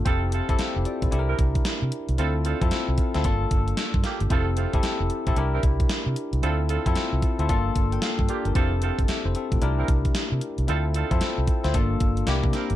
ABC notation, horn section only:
X:1
M:4/4
L:1/16
Q:"Swing 16ths" 1/4=113
K:Gdor
V:1 name="Horn section"
[CEFA] z [CEFA] z6 [CDEB] z6 | [CDFA] z [CDFA] z8 z3 [B,DFG] z | [CEFA] z [CEFA] z6 [CDEB] z6 | [CDFA] z [CDFA] z8 z3 [B,DFG] z |
[CEFA] z [CEFA] z6 [CDEB] z6 | [CDFA] z [CDFA] z8 z3 [CDEB] z |]